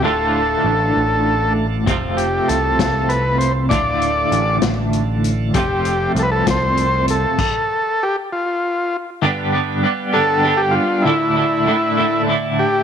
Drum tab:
CC |------|------|------|------|
HH |------|xxxxxx|xxxxxx|xxxxxx|
SD |------|---o--|---o--|---o--|
BD |------|o--o--|o-----|o--o--|

CC |x-----|------|------|
HH |------|------|------|
SD |------|------|------|
BD |o-----|------|------|